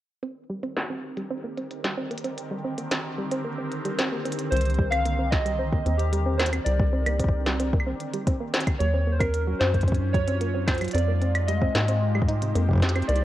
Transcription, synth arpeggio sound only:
0.23 0.30 C4 medium
0.50 0.63 G3 loud
0.63 0.70 C4 loud
0.77 0.84 A#3 medium
0.90 0.97 C4 medium
1.17 1.30 G3 medium
1.30 1.37 C4 loud
1.44 1.51 A#3 medium
1.57 1.64 C4 medium
1.84 1.97 G3 loud
1.97 2.04 C4 medium
2.11 2.18 A#3 medium
2.24 2.31 C4 medium
2.51 2.64 G3 medium
2.64 2.71 C4 loud
2.78 2.85 A#3 medium
2.91 2.98 C4 medium
3.18 3.31 G3 loud
3.31 3.38 C4 loud
3.45 3.52 A#3 medium
3.58 3.65 C4 medium
3.85 3.98 G3 loud
3.98 4.05 C4 loud
4.12 4.19 A#3 medium
4.25 4.32 C4 medium
4.52 4.59 C4 medium
4.79 4.91 G3 loud
4.92 4.99 C4 loud
5.05 5.12 A#3 medium
5.19 5.26 C4 medium
5.45 5.58 G3 medium
5.59 5.66 C4 loud
5.72 5.79 A#3 medium
5.86 5.93 C4 medium
6.12 6.25 G3 loud
6.26 6.33 C4 loud
6.39 6.46 A#3 medium
6.53 6.60 C4 medium
6.79 6.92 G3 loud
6.93 7.00 C4 loud
7.06 7.13 A#3 medium
7.20 7.27 C4 medium
7.46 7.59 G3 loud
7.60 7.67 C4 medium
7.73 7.80 A#3 medium
7.87 7.94 C4 medium
8.14 8.26 G3 loud
8.27 8.34 C4 loud
8.40 8.47 A#3 medium
8.54 8.61 C4 medium
8.80 8.93 F#3 loud
8.94 9.01 C4 medium
9.07 9.14 A#3 medium
9.21 9.28 C4 medium
9.47 9.60 F#3 loud
9.61 9.68 C4 loud
9.74 9.81 A#3 medium
9.88 9.95 C4 medium
10.14 10.27 F#3 loud
10.28 10.35 C4 loud
10.41 10.48 A#3 medium
10.55 10.62 C4 medium
10.81 10.94 F#3 loud
10.95 11.02 C4 loud
11.08 11.15 A#3 medium
11.22 11.29 C4 medium
11.48 11.61 G3 medium
11.62 11.69 C4 loud
11.75 11.82 A#3 medium
11.89 11.95 C4 medium
12.15 12.28 G3 loud
12.29 12.40 D#4 loud
12.42 12.54 C3 medium
12.55 12.62 A#3 loud
12.69 12.81 G4 medium
12.82 12.94 C4 medium
12.96 13.07 C4 medium
13.09 13.16 A#3 medium

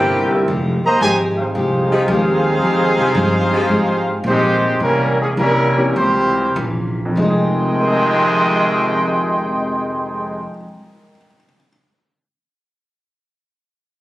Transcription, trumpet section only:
0.00 0.32 E4 medium
0.00 0.32 A#4 medium
0.00 0.32 C5 medium
0.00 0.32 G5 loud
0.33 0.50 C4 medium
0.33 0.50 G4 medium
0.33 0.49 A#4 medium
0.33 0.49 E5 medium
0.85 1.01 G4 medium
0.85 1.01 C5 loud
0.85 1.01 D#5 medium
0.85 1.01 A#5 loud
1.02 1.18 D#4 medium
1.02 1.18 G4 medium
1.02 1.18 C5 medium
1.02 1.18 G#5 loud
1.38 4.21 D#4 medium
1.38 4.21 G#4 medium
1.38 4.21 C5 medium
1.38 4.21 F5 loud
4.27 4.78 G#3 medium
4.27 4.78 D#4 loud
4.27 4.78 G4 loud
4.27 4.78 C5 loud
4.82 5.20 G3 medium
4.82 5.19 C#4 medium
4.82 5.20 E4 medium
4.82 5.20 A#4 loud
5.21 5.29 A#3 medium
5.21 5.29 C#4 medium
5.21 5.29 G#4 medium
5.38 5.93 G3 medium
5.38 5.92 C#4 medium
5.38 5.93 E4 medium
5.38 5.93 A#4 loud
5.97 6.57 A#3 medium
5.97 6.57 E4 medium
5.97 6.57 G4 medium
5.97 6.56 C5 loud
7.19 10.47 G#4 medium
7.19 10.47 D#5 medium
7.19 10.47 G5 medium
7.19 10.47 C6 medium

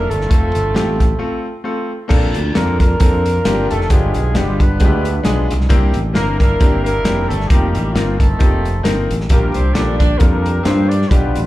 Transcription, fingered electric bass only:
0.11 0.27 G1 medium
0.31 0.52 F1 loud
0.55 0.72 G1 medium
0.75 1.13 A1 medium
2.11 2.32 A#1 loud
2.36 2.53 D2 medium
2.56 2.94 F2 medium
3.00 3.39 F2 medium
3.46 3.67 G1 medium
3.72 3.88 F1 loud
3.91 4.12 G1 loud
4.16 4.37 B1 medium
4.36 4.82 G1 medium
4.81 5.19 D2 loud
5.25 5.47 B1 medium
5.52 5.68 C2 loud
5.70 5.92 C2 loud
5.96 6.13 A1 medium
6.16 6.54 G1 loud
6.61 6.99 G1 loud
7.05 7.26 F1 medium
7.30 7.47 G1 loud
7.50 7.72 F1 loud
7.76 7.93 A1 medium
7.95 8.34 G1 medium
8.41 8.79 F1 loud
8.86 9.07 G1 medium
9.11 9.28 A1 medium
9.30 9.52 A#1 loud
9.55 9.73 C2 medium
9.76 10.14 A#1 medium
10.21 10.59 F2 medium
10.65 11.04 G2 medium
11.11 11.32 B1 loud
11.37 11.46 A1 medium

